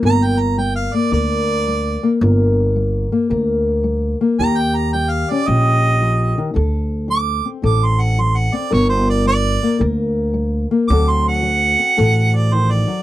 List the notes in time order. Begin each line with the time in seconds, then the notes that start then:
Already playing: A#3
0.03 G1 G2 A#4 A#5
0.24 G5
0.39 A#5
0.58 G3 G5
0.76 F5
0.94 A#3 D5
1.12 D2 D3 A#4 D5
1.68 G3
2.03 A#3
2.21 G1 G2 A#4
2.76 G3
3.12 A#3
3.30 D2 D3 A#4
3.84 G3
4.21 A#3
4.39 D#2 D#3 G4 A#5
4.57 G5
4.75 A#5
4.93 G3 G5
5.10 F5
5.31 C#4 D5
5.47 A#1 A#2 G4 D#5
6.02 F3
6.38 D#3
6.54 D2 D3 A4
7.08 F#3 D6
7.45 C4
7.62 A1 A2 A4 D6
7.85 C6
8.02 F#5
8.18 F#3 C6
8.38 F#5
8.53 C4 D5
8.70 G1 G2 A#4 C#5
8.89 C5
9.10 D5
9.26 G3 D5
9.63 A#3
9.79 D2 D3 A#4
10.34 G3
10.71 A#3
10.88 D2 D3 F#3 C4 F#4 D6
10.93 A4
11.09 C6
11.28 F#5
11.43 F#3
11.79 C4
11.97 A1 A2 A4
12.36 D5
12.52 D#3 C5
12.71 D5
12.87 F#3